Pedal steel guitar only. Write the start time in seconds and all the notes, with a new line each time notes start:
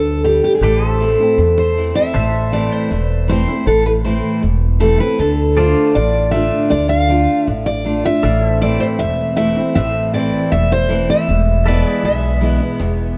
Already playing: G4 D5
0.63 G4 B4 D5
0.83 C5
0.88 A4 E5
2.14 A4 C5 E5
5.57 F4 A4 D5
8.23 A4 D5 F5
8.46 C5 E5
11.66 A4 B4 E5
11.86 G#4